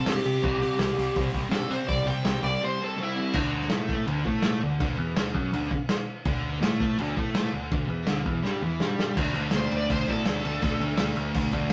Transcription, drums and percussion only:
0.06 snare loud
0.06 open hi-hat medium
0.25 open hi-hat medium
0.43 kick loud
0.43 crash medium
0.62 open hi-hat medium
0.79 snare loud
0.79 open hi-hat medium
0.99 open hi-hat medium
1.16 kick loud
1.16 open hi-hat medium
1.34 kick medium
1.34 open hi-hat medium
1.51 snare loud
1.51 open hi-hat medium
1.71 open hi-hat medium
1.89 kick loud
1.89 open hi-hat medium
2.07 open hi-hat medium
2.25 snare loud
2.25 open hi-hat medium
2.43 open hi-hat medium
3.34 kick loud
3.34 crash loud
3.34 crash medium
3.61 snare soft
3.70 snare loud
3.70 crash medium
3.88 kick loud
3.88 snare soft
4.08 crash medium
4.26 kick medium
4.42 snare loud
4.42 crash medium
4.80 kick loud
4.80 crash medium
5.17 snare loud
5.17 crash medium
5.35 kick medium
5.53 crash medium
5.71 kick medium
5.89 snare loud
5.89 crash medium
6.25 kick loud
6.25 crash medium
6.63 snare loud
6.63 crash medium
6.80 kick loud
6.80 snare soft
6.99 crash medium
7.17 kick medium
7.35 snare loud
7.35 crash medium
7.71 kick loud
7.71 crash medium
8.07 snare loud
8.07 crash medium
8.26 kick loud
8.45 snare medium
8.80 snare loud
8.99 snare loud
9.17 kick loud
9.17 crash loud
9.17 crash medium
9.35 crash medium
9.51 snare loud
9.51 crash medium
9.72 crash medium
9.90 kick loud
9.90 crash medium
10.08 kick medium
10.08 crash medium
10.26 snare loud
10.26 crash medium
10.45 crash medium
10.62 kick loud
10.62 crash medium
10.81 crash medium
10.98 snare loud
10.98 crash medium
11.16 crash medium
11.34 kick loud
11.34 crash medium
11.53 kick medium
11.53 crash medium

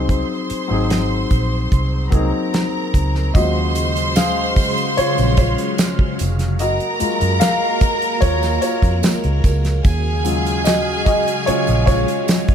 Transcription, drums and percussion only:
0.09 kick loud
0.09 closed hi-hat medium
0.50 closed hi-hat medium
0.90 snare loud
0.90 closed hi-hat medium
1.31 kick medium
1.31 closed hi-hat medium
1.72 kick medium
1.72 closed hi-hat medium
2.12 kick medium
2.12 closed hi-hat medium
2.54 snare loud
2.54 closed hi-hat medium
2.94 kick medium
2.94 closed hi-hat medium
3.15 snare soft
3.35 kick loud
3.35 closed hi-hat medium
3.35 tambourine soft
3.75 closed hi-hat medium
3.75 tambourine soft
3.96 closed hi-hat soft
3.96 tambourine soft
4.16 snare loud
4.16 closed hi-hat loud
4.16 tambourine medium
4.56 kick medium
4.56 open hi-hat medium
4.56 tambourine medium
4.77 closed hi-hat soft
4.77 tambourine soft
4.97 closed hi-hat medium
5.18 closed hi-hat soft
5.18 tambourine soft
5.37 kick medium
5.37 closed hi-hat medium
5.37 tambourine soft
5.58 closed hi-hat soft
5.78 snare loud
5.78 closed hi-hat medium
5.78 tambourine medium
5.99 kick medium
6.19 closed hi-hat medium
6.19 tambourine soft
6.39 snare soft
6.39 closed hi-hat soft
6.39 tambourine soft
6.59 closed hi-hat medium
6.59 tambourine soft
6.80 closed hi-hat soft
7.00 closed hi-hat medium
7.00 tambourine soft
7.21 closed hi-hat soft
7.21 tambourine soft
7.41 snare loud
7.41 closed hi-hat medium
7.41 tambourine medium
7.81 kick loud
7.81 closed hi-hat medium
7.81 tambourine medium
8.02 closed hi-hat soft
8.22 kick medium
8.22 closed hi-hat medium
8.43 snare soft
8.43 closed hi-hat soft
8.43 tambourine soft
8.62 closed hi-hat medium
8.62 tambourine soft
8.82 kick medium
8.82 closed hi-hat soft
8.82 tambourine soft
9.03 snare loud
9.03 closed hi-hat medium
9.03 tambourine medium
9.24 closed hi-hat soft
9.44 kick medium
9.44 closed hi-hat medium
9.44 tambourine medium
9.64 snare soft
9.64 closed hi-hat soft
9.64 tambourine soft
9.84 kick loud
9.84 closed hi-hat medium
9.84 tambourine soft
10.25 closed hi-hat medium
10.25 tambourine soft
10.45 closed hi-hat soft
10.45 tambourine soft
10.65 snare loud
10.65 closed hi-hat loud
10.65 tambourine medium
11.06 kick medium
11.06 closed hi-hat medium
11.06 tambourine medium
11.27 closed hi-hat medium
11.27 tambourine soft
11.47 closed hi-hat medium
11.67 closed hi-hat soft
11.67 tambourine soft
11.87 kick medium
11.87 closed hi-hat medium
11.87 tambourine soft
12.08 closed hi-hat soft
12.08 tambourine soft
12.28 snare loud
12.28 closed hi-hat medium
12.28 tambourine medium
12.48 kick medium
12.48 closed hi-hat soft

